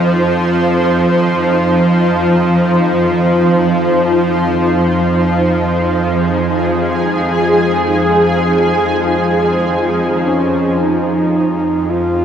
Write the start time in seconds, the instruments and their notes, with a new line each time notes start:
Already playing: synth drone F2 F3, ambient pad F3 D#4 F4 C5
5.28 ambient pad G#4
10.24 duduk C#4
10.78 synth drone F2 F3, duduk D#4
11.90 duduk F4